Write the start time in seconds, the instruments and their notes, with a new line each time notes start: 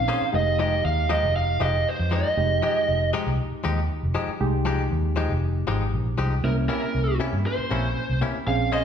Already playing: reed electric piano C4 C#4 D#4, lead electric guitar F5
0.08 clean electric guitar A#3 C#4 G#4 C5
0.21 muted fingered electric bass stroke
0.33 fingered electric bass F1, reed electric piano G#3 D#4 G4, lead electric guitar D#5
0.59 clean electric guitar F3 G#3 D#4 G4, lead electric guitar D#5
0.84 fingered electric bass D#2, lead electric guitar F5
1.09 clean electric guitar F3 G#3 D#4 G4, lead electric guitar D#5
1.23 fingered electric bass F1
1.36 lead electric guitar F5
1.60 fingered electric bass F1, clean electric guitar F3 G#3 D#4 G4, lead electric guitar D#5
1.89 lead electric guitar C5
1.99 fingered electric bass F2
2.11 clean electric guitar F3 G#3 D#4 G4, lead electric guitar D#5
2.37 fingered electric bass F1, reed electric piano G#3 D#4 G4
2.62 clean electric guitar F3 G#3 D#4 G4
2.88 fingered electric bass F1
3.13 clean electric guitar F3 G#3 D#4 G4
3.27 fingered electric bass C2
3.52 muted fingered electric bass stroke
3.64 fingered electric bass D#2, clean electric guitar F3 G#3 D#4 G4
4.03 fingered electric bass F1
4.15 clean electric guitar F3 G#3 D#4 G4
4.28 muted fingered electric bass stroke
4.40 fingered electric bass C2, reed electric piano G#3 D#4 G4
4.65 clean electric guitar F3 G#3 D#4 G4
4.91 fingered electric bass D#2
5.16 clean electric guitar F3 G#3 D#4 G4
5.30 fingered electric bass F1
5.67 fingered electric bass G#1, clean electric guitar F3 G#3 D#4 G4
5.93 fingered electric bass A#1
6.18 fingered electric bass C2, clean electric guitar F3 G#3 D#4 G4
6.43 fingered electric bass C2, reed electric piano A#3 C#4 E4, lead electric guitar A#4
6.69 clean electric guitar C3 A#3 C#4 E4, lead electric guitar A#4
6.95 fingered electric bass C2
7.20 clean electric guitar C3 A#3 C#4 E4
7.33 fingered electric bass G2
7.46 lead electric guitar C5
7.58 muted fingered electric bass stroke
7.71 fingered electric bass A#1, clean electric guitar C3 A#3 C#4 E4
8.10 fingered electric bass C2
8.21 clean electric guitar C3 A#3 C#4 E4
8.47 fingered electric bass A#1, reed electric piano C4 C#4 G#4, lead electric guitar F5
8.72 clean electric guitar A#3 C#4 G#4 C5, lead electric guitar D#5